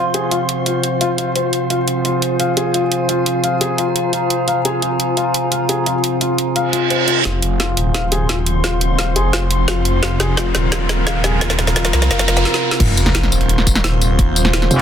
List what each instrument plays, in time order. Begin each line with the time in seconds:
Already playing: synth drone C3 F3 F4 C5, ambient pad F4 C5 C6
0.14 felt piano G#4, closed hi-hat
0.31 felt piano F4, closed hi-hat
0.49 closed hi-hat
0.66 felt piano F4, closed hi-hat
0.84 closed hi-hat
1.01 felt piano F4, closed hi-hat
1.18 felt piano F4, closed hi-hat
1.36 felt piano C5, closed hi-hat
1.53 closed hi-hat
1.70 felt piano F4, synth drone G#4, closed hi-hat
1.88 closed hi-hat
2.05 felt piano F4, closed hi-hat
2.22 closed hi-hat
2.40 felt piano F5, closed hi-hat
2.57 felt piano G#4, closed hi-hat
2.74 felt piano F4, ambient pad A#5, closed hi-hat
2.92 closed hi-hat
3.09 felt piano F4, closed hi-hat
3.26 closed hi-hat
3.44 felt piano F5, closed hi-hat
3.61 felt piano G#4, closed hi-hat
3.78 felt piano F4, closed hi-hat
3.96 closed hi-hat
4.13 felt piano F4, closed hi-hat
4.30 closed hi-hat
4.48 felt piano F5, closed hi-hat
4.65 felt piano G#4, closed hi-hat
4.82 felt piano F4, closed hi-hat
5.00 closed hi-hat
5.17 felt piano F4, closed hi-hat
5.34 closed hi-hat
5.52 felt piano F5, closed hi-hat
5.69 felt piano G#4, closed hi-hat
5.86 felt piano F4, closed hi-hat
6.04 closed hi-hat
6.21 felt piano F4, closed hi-hat
6.38 closed hi-hat
6.56 felt piano F5, closed hi-hat, reverse cymbal
6.73 felt piano F4, closed hi-hat
6.90 felt piano C5, closed hi-hat
7.08 felt piano F4, closed hi-hat
7.25 detuned saw bass F1, synth drone C3 F3 F4 C5, felt piano F4, kick, snare, closed hi-hat, riser
7.42 detuned saw bass F1, ambient pad C6, closed hi-hat
7.60 felt piano F4, kick, snare, closed hi-hat
7.77 detuned saw bass D#1, closed hi-hat
7.94 felt piano F5, kick, snare, closed hi-hat
8.12 felt piano G#4, closed hi-hat
8.29 felt piano F4, kick, snare, closed hi-hat
8.46 closed hi-hat
8.64 felt piano F4, kick, snare, closed hi-hat
8.81 closed hi-hat
8.99 felt piano F5, kick, snare, closed hi-hat
9.16 detuned saw bass F1, felt piano G#4, closed hi-hat
9.33 felt piano F4, kick, snare, closed hi-hat
9.51 closed hi-hat
9.68 detuned saw bass F1, felt piano F4, kick, snare, closed hi-hat
9.85 closed hi-hat
10.03 detuned saw bass F1, synth drone A#4, felt piano F5, kick, snare, closed hi-hat
10.20 detuned saw bass F1, felt piano G#4, snare, closed hi-hat
10.37 felt piano F4, kick, snare, closed hi-hat
10.55 detuned saw bass D#1, snare, closed hi-hat
10.72 felt piano F4, kick, snare, closed hi-hat
10.89 snare, closed hi-hat
11.07 felt piano F5, kick, snare, closed hi-hat
11.24 felt piano G#4, snare, closed hi-hat
11.41 felt piano F4, kick, snare, closed hi-hat
11.50 snare
11.59 snare, closed hi-hat
11.67 snare
11.76 felt piano F4, kick, snare, closed hi-hat
11.85 snare
11.93 detuned saw bass C2, snare, closed hi-hat
12.02 snare
12.11 detuned saw bass F#1, felt piano F5, kick, snare, closed hi-hat
12.19 snare
12.28 detuned saw bass F1, felt piano F4, snare, closed hi-hat
12.37 snare
12.45 snare
12.54 snare
12.71 snare
12.80 detuned saw bass F1, synth drone C3 F3 F4 C5, ambient pad F4, kick, closed hi-hat, crash, sub drop
12.97 detuned saw bass F1, ambient pad C5, closed hi-hat, tambourine
13.06 snare, closed hi-hat
13.15 snare, closed hi-hat
13.23 snare, closed hi-hat
13.32 detuned saw bass D#1, closed hi-hat, tambourine
13.41 closed hi-hat
13.49 closed hi-hat
13.58 snare
13.67 kick, closed hi-hat, tambourine
13.75 snare, closed hi-hat, tambourine
13.84 snare, closed hi-hat
14.01 closed hi-hat, tambourine
14.19 kick, closed hi-hat
14.36 closed hi-hat, tambourine
14.45 snare, closed hi-hat
14.53 snare, closed hi-hat
14.62 snare, closed hi-hat
14.71 wobble bass F1, closed hi-hat, tambourine